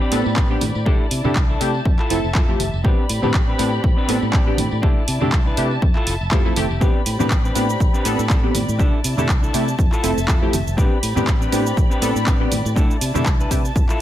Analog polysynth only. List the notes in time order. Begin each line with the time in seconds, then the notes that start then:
0.11 B3 C4 D4 A4
0.50 B3 C4 D4 G4
0.86 A3 D4 E4 G4
1.24 A3 D4 E4 G4
1.60 A3 D4 E4 G4
2.10 A3 C4 E4 A4
2.48 A3 C4 E4 G4
2.84 B3 C4 D4 G4
3.23 B3 C4 D4 G4
3.58 B3 C4 D4 G4
4.08 B3 C4 D4 A4
4.47 B3 C4 D4 G4
4.83 A3 D4 E4 G4
5.21 A3 D4 E4 G4
5.57 A3 D4 E4 G4
6.32 A3 C4 E4 G4
6.45 A3 C4 E4 A4
6.56 A3 C4 E4 G4
6.81 B3 C4 D4 G4
7.19 B3 C4 D4 G4
7.55 B3 C4 D4 G4
8.05 B3 C4 D4 A4
8.43 B3 C4 D4 G4
8.79 A3 D4 E4 G4
9.18 A3 D4 E4 G4
9.54 A3 D4 E4 G4
10.03 A3 C4 E4 A4
10.42 A3 C4 E4 G4
10.78 B3 C4 D4 G4
11.16 B3 C4 D4 G4
11.52 B3 C4 D4 G4
12.02 B3 C4 D4 A4
12.40 B3 C4 D4 G4
12.76 A3 D4 E4 G4
13.14 A3 D4 E4 G4
13.51 A3 D4 E4 G4